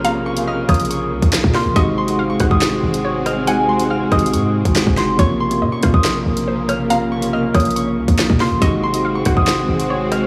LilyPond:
<<
  \new Staff \with { instrumentName = "Harp" } { \time 4/4 \key bes \minor \tempo 4 = 140 bes''8 des'''8 f'''8 ees'''8 des'''4. c'''8 | des'''8 c'''8. des'''8 ees'''4.~ ees'''16 f'''8 | aes''8 c'''8 f'''8 ees'''8 des'''4. c'''8 | des'''8 c'''8. des'''8 ees'''4.~ ees'''16 f'''8 |
bes''8 des'''8 f'''8 ees'''8 des'''4. c'''8 | des'''8 c'''8. des'''8 ees'''4.~ ees'''16 f'''8 | }
  \new Staff \with { instrumentName = "Synth pluck" } { \time 4/4 \key bes \minor f''4 ees''8 des''2 f''8 | ees''4 f''8 ges''4. des''8 ees''8 | ges''4 f''8 ees''8 r2 | des''4 ees''8 f''4. c''8 des''8 |
f''4 ees''8 des''2 f''8 | ees''4 f''8 ges''4. des''8 ees''8 | }
  \new Staff \with { instrumentName = "Tine electric piano" } { \time 4/4 \key bes \minor <c bes des' f'>8 r16 <c bes des' f'>8 r16 <des bes des' f'>4.~ <des bes des' f'>16 r16 <c bes des' f'>8 | <c aes ees' ges'>8 r16 <c aes ees' ges'>8 r16 <c aes ees' ges'>4.~ <c aes ees' ges'>16 r8. | <c aes ees' ges'>8 r16 <c aes ees' aes'>8 r16 <c aes ees' ges'>4.~ <c aes ees' ges'>16 r16 <c aes ees' ges'>8 | <c bes des' f'>8 r16 <c bes des' f'>8 r16 <bes c' des' f'>4.~ <bes c' des' f'>16 r8. |
<c bes des' f'>8 r16 <c bes des' f'>8 r16 <des bes des' f'>4.~ <des bes des' f'>16 r16 <c bes des' f'>8 | <c aes ees' ges'>8 r16 <c aes ees' ges'>8 r16 <c aes ees' ges'>4.~ <c aes ees' ges'>16 r8. | }
  \new Staff \with { instrumentName = "String section" } { \time 4/4 \key bes \minor <des bes>1 | <aes c' ges'>1~ | <aes c' ges'>1 | <des bes>1~ |
<des bes>1 | <aes c' ges'>1 | }
  \new Staff \with { instrumentName = "808-style bass" } { \clef bass \time 4/4 \key bes \minor bes,,4. bes,,4 c,16 bes,,8 bes,8 aes,,16 | aes,,4. ges,,16 aes,,8. aes,,4.~ | aes,,4. aes,,8 aes,8. aes,,8 ges,,8. | bes,,4 bes,8 bes,16 bes,,8. bes,,4.~ |
bes,,4. bes,,4 c,16 bes,,8 bes,8 aes,,16 | aes,,4. ges,,16 aes,,8. aes,,4. | }
  \new DrumStaff \with { instrumentName = "Drums" } \drummode { \time 4/4 hh8. hh16 r8 <hh bd ss>32 hh32 hh32 hh32 hh8. <hh bd>16 <hc sn>16 bd16 <hho ss sn>8 | <hh bd>8. hh16 r8 <hh bd ss>16 bd16 <hc hh sn>8. hh16 r8 <hh ss>8 | hh8. hh16 \tuplet 3/2 { r16 r16 r16 <hh bd ss>16 hh16 hh16 } hh8. <hh bd>16 <hc sn>16 bd16 <hh ss sn>8 | <hh bd>8. hh16 r8 <hh bd ss>16 bd16 <hc hh sn>8. hh16 r8 <hh ss>8 |
hh8. hh16 r8 <hh bd ss>32 hh32 hh32 hh32 hh8. <hh bd>16 <hc sn>16 bd16 <hho ss sn>8 | <hh bd>8. hh16 r8 <hh bd ss>16 bd16 <hc hh sn>8. hh16 r8 <hh ss>8 | }
>>